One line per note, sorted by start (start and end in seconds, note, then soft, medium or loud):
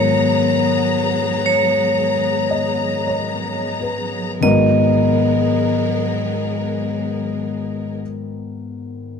0.00 4.39 G#2 soft
0.00 4.40 D#3 soft
0.00 4.37 F#3 medium
0.00 4.37 B3 medium
0.00 4.41 B3 soft
0.00 4.41 F#4 soft
0.00 4.37 G#4 medium
0.00 4.42 A#4 soft
0.00 1.45 C#5 medium
0.00 4.37 A#5 medium
1.46 3.04 C#5 medium
2.50 3.40 D#5 soft
3.07 4.15 C#5 soft
3.81 4.76 B4 soft
4.40 8.00 G#2 medium
4.40 8.01 D#3 soft
4.40 7.97 F#3 medium
4.40 7.97 B3 medium
4.40 8.02 B3 soft
4.40 8.02 F#4 soft
4.40 7.98 G#4 medium
4.40 7.95 A#4 medium
4.40 8.03 A#4 medium
4.40 7.98 D#5 medium